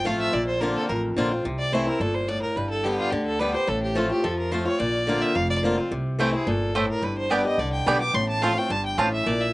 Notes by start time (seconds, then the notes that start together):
0.05 A1 F3 A3 C4 F4 F5
0.20 E5
0.33 A#1 A#2 D5
0.47 C5
0.60 D3 A#3 C4 F4 A#4
0.74 A4
0.89 A1 F2 A#4
1.17 A#1 D3 A#3 C4 F4
1.31 C4 F4
1.45 C2 C3
1.59 D5
1.72 E3 A3 C4 E4 C5
1.86 C4 E4 A#4
2.00 G1 A#2 A4
2.15 C5
2.28 A2 D5
2.42 A#4
2.56 G1 G2 B4
2.70 A4
2.83 D3 G3 B3 G4
2.98 F4
3.10 D2 D3 G4
3.26 A4
3.39 D3 G3 B3 G4 B4
3.54 B3 G4 C5
3.67 A1 A2 A4
3.83 G4
3.95 F3 A3 C4 F4 A4
4.10 C4 F4 G4
4.24 F2 F3 A4
4.39 A#4
4.52 F3 A3 C4 F4 C5
4.65 C4 F4 C#5
4.79 A#1 A#2 D5
5.07 D3 A#3 C4 F4
5.22 E5
5.35 F1 F2 F5
5.50 D5
5.63 D3 A#3 C4 F4
5.78 C4 F4
5.91 C2 C3
6.19 E3 A3 C4 E4 C5 G5
6.33 C4 E4 G#4
6.47 G1 A#2 A4
6.75 A2 A3 E4 C5 G5
6.90 A#4
7.02 G1 G2 B4
7.18 C5
7.30 D3 G3 B3 G4 D5 G5
7.45 B3 G4 D#5
7.58 C2 D3 D5
7.73 G5
7.86 B1 D3 G3 B3 G4 D5 G5 B5
8.00 B3 G4 D6
8.14 A1 A2 C6
8.29 A5
8.42 F3 A3 C4 F4 C5 F5 A5
8.57 C4 F4 G5
8.70 G1 G2 A5
8.86 G5
8.98 A1 A2 C4 F4 C5 F5 A5
9.14 E5
9.26 A#1 A#2 D5
9.41 E5